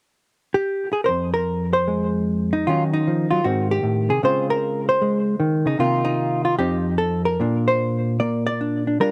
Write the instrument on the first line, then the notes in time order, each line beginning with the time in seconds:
hollow-body jazz guitar
0.54 G4
0.93 G#4
1.04 A#4 C5
1.09 F2
1.34 A#4
1.73 C5
1.88 G#3
2.53 D#4
2.67 D#3 F#3 C#4 D#4 F4
2.93 D#4
3.07 F3
3.31 F#3 F4
3.44 G#2 D#3 C4 F#4
3.71 G4
3.83 A2
4.09 C3 G#4
4.23 C#3 G#3 C4 F4 C5
4.50 A#4
4.89 C5
5.02 G#3
5.40 D#3
5.66 C#3 D#4
5.79 C3 D#3 A#3 D#4 F4
6.05 D#4
6.45 F4
6.58 F2 F3 C4 D#4 G4
6.98 A4
7.25 A#4
7.40 A#2 A#3 D4
7.68 C5
8.20 A#3 D5
8.47 D5
8.61 D4
8.87 D4
9.00 G3 D4 F4 A#4